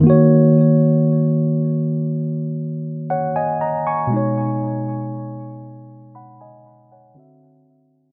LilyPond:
\new Staff \with { instrumentName = "Tine electric piano" } { \time 4/4 \key dis \phrygian \tempo 4 = 59 << { r2. <cis'' fis''>16 <dis'' gis''>16 <dis'' ais''>16 <gis'' cis'''>16~ | <gis'' cis'''>16 r4. r16 <fis'' b''>16 <dis'' gis''>8 <cis'' fis''>8 r8. | } \\ { <dis ais fis' cis''>1 | <b, gis dis' cis''>2. <d c' fis' e''>4 | } >> }